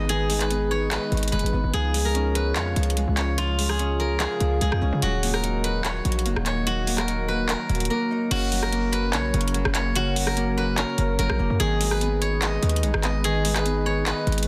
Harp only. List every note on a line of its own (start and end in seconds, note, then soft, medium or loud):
0.00 0.14 G#3 medium
0.00 0.50 B3 medium
0.00 0.91 D#5 loud
0.09 1.11 D#3 medium
0.30 1.17 G#3 medium
0.50 1.53 B3 medium
0.91 2.70 D#5 loud
1.12 1.79 D#3 medium
1.32 1.79 G#3 medium
1.53 4.64 B3 medium
1.73 2.75 F3 medium
1.94 2.96 G#3 medium
2.15 3.17 C#4 medium
2.56 4.20 F5 loud
2.76 3.37 F3 medium
2.97 3.57 G#3 medium
3.17 3.78 C#4 medium
3.38 4.39 F3 medium
3.58 4.60 G#3 medium
3.79 4.81 C#4 medium
4.20 5.08 F5 loud
4.41 5.07 F3 medium
4.61 5.07 G#3 medium
4.82 7.72 C#4 medium
5.02 6.04 F#3 medium
5.23 6.25 A#3 medium
5.43 6.46 D#4 medium
5.84 7.45 F#5 loud
6.05 6.65 F#3 medium
6.26 6.87 A#3 medium
6.46 7.07 D#4 medium
6.66 7.68 F#3 medium
6.87 7.89 A#3 medium
7.08 8.10 D#4 medium
7.49 9.10 F#5 medium
7.69 8.36 F#3 medium
7.90 8.72 A#3 medium
8.11 10.81 D#4 medium
8.31 9.33 C#3 loud
8.52 9.39 F#3 medium
8.72 9.74 A#3 medium
9.13 10.77 C#5 loud
9.34 9.94 C#3 medium
9.54 10.00 F#3 loud
9.75 10.36 A#3 medium
9.95 10.97 C#3 loud
10.16 11.03 F#3 medium
10.36 11.39 A#3 loud
10.77 12.69 C#5 medium
10.98 11.65 C#3 medium
11.19 11.65 F#3 loud
11.39 12.07 A#3 medium
11.60 12.61 D#3 loud
11.80 12.68 G#3 medium
12.01 13.03 B3 medium
12.42 14.06 D#5 loud
12.63 13.23 D#3 medium
12.83 13.29 G#3 medium
13.04 13.65 B3 medium
13.24 14.26 D#3 medium
13.45 14.32 G#3 medium
13.65 14.48 B3 medium
14.06 14.48 D#5 loud
14.27 14.48 D#3 medium